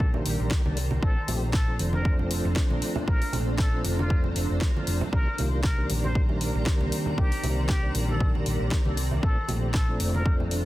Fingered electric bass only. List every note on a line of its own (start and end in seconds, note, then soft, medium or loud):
0.00 0.22 A#1 loud
0.26 0.37 A#1 medium
0.40 0.49 A#1 medium
0.65 0.99 C2 loud
1.03 1.14 A#1 loud
1.28 1.76 A#1 loud
1.79 2.41 F1 loud
2.45 2.54 F1 loud
2.70 2.80 A#1 medium
3.08 3.19 A#1 loud
3.33 3.81 A#1 loud
3.85 4.33 F1 loud
4.36 4.47 F1 medium
4.50 4.59 F1 medium
4.87 4.99 F1 medium
5.13 5.24 C2 loud
5.38 5.86 C2 loud
5.90 6.51 A#1 loud
6.55 6.65 A#1 loud
6.81 6.90 C2 medium
7.18 7.29 C2 loud
7.44 7.92 C2 loud
7.95 8.43 A#1 loud
8.46 8.58 A#1 medium
8.60 8.70 A#1 medium
8.86 9.20 C2 loud
9.49 9.97 A#1 loud
10.00 10.61 F1 loud